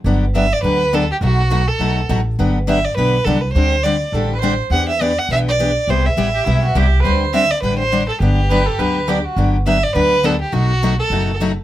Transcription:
X:1
M:4/4
L:1/16
Q:"Swing" 1/4=206
K:G
V:1 name="Violin"
z4 e2 d2 B4 A2 G2 | F6 A6 z4 | z4 e2 d2 B4 A2 B2 | c4 d4 z8 |
f2 e2 d2 f2 e2 d6 | c2 e12 z2 | z4 e2 d2 B2 c4 A2 | G12 z4 |
z4 e2 d2 B4 A2 G2 | F6 A6 z4 |]
V:2 name="Violin"
z16 | z16 | z16 | z8 A3 B c3 z |
z16 | z6 G2 E2 F2 G3 B | c3 z12 z | z4 B2 A2 B4 G3/2 G/2 F2 |
z16 | z16 |]
V:3 name="Steel-string acoustic guitar"
[D,F,B,DG]2 z2 [D,F,B,DG]2 z2 [D,F,B,DG]2 z2 [D,F,B,DG]2 z2 | [B,,F,A,^DF]2 z2 [B,,F,A,DF]2 z2 [B,,F,A,DF]2 z2 [B,,F,A,DF]2 z2 | [D,F,B,DG]2 z2 [D,F,B,DG]2 z2 [D,F,B,DG]2 z2 [D,F,B,DG]2 z2 | [D,G,CDG]2 z2 [D,G,CDG]2 z2 [D,G,CDG]2 z2 [D,G,CDG]2 z2 |
[E,B,DG]2 z2 [E,B,DG]2 z2 [E,B,DG]2 z2 [E,B,DG]2 z2 | [C,G,B,EG]2 z2 [C,G,B,EG]2 z2 [C,G,B,EG]2 z2 [C,G,B,EG]2 z2 | [D,G,CDG]2 z2 [D,G,CDG]2 z2 [D,G,CDG]2 z2 [D,G,CDG]2 z2 | [D,F,B,DG]2 z2 [D,F,B,DG]2 z2 [D,F,B,DG]2 z2 [D,F,B,DG]2 z2 |
[D,F,B,DG]2 z2 [D,F,B,DG]2 z2 [D,F,B,DG]2 z2 [D,F,B,DG]2 z2 | [B,,F,A,^DF]2 z2 [B,,F,A,DF]2 z2 [B,,F,A,DF]2 z2 [B,,F,A,DF]2 z2 |]
V:4 name="Upright bass" clef=bass
G,,,8 D,,8 | B,,,8 B,,,4 A,,,4 | G,,,8 B,,,4 C,,4 | D,,8 A,,,8 |
E,,8 B,,,8 | C,,4 A,,,4 B,,,4 C,,4 | D,,8 A,,,8 | G,,,8 D,,8 |
G,,,8 D,,8 | B,,,8 F,,,8 |]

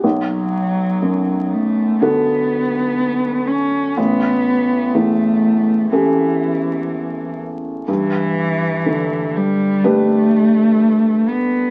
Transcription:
X:1
M:4/4
L:1/8
Q:1/4=61
K:Bm
V:1 name="Felt piano"
B,,,2 F,,2 [D,FA]4 | A,,,2 E,,2 [CGA]4 | G,,2 D,2 [DGB]4 |]
V:2 name="Cello"
F,3 A, B,3 C | B,2 A,2 E,3 z | E,3 G, A,3 B, |]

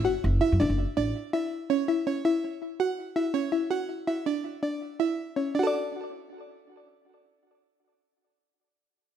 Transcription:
X:1
M:5/4
L:1/16
Q:1/4=163
K:D
V:1 name="Synth arpeggio sound"
F4 E2 D4 D4 E4 C2 | E2 C2 E4 z2 F4 E2 C2 E2 | F4 E2 D4 D4 E4 C2 | [DFAd]16- [DFAd]4- |
[DFAd]16- [DFAd]4 |]
V:2 name="Upright bass" clef=bass
F,,, z F,,,2 z F,, F,,, F,,,2 z A,,,2 z8 | z16 z4 | z16 z4 | z16 z4 |
z16 z4 |]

